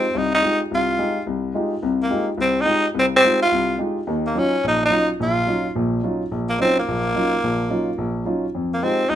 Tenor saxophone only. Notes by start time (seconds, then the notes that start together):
Already playing: C4
0.17 D#4
0.34 D#4
0.75 F4
2.03 A#3
2.41 C4
2.61 D#4
2.99 C4
3.16 C4
3.43 F4
4.27 A#3
4.39 C#4
4.68 D#4
4.86 D#4
5.23 F4
6.49 A#3
6.62 C4
6.80 A#3
8.74 A#3
8.84 C4
9.09 D#4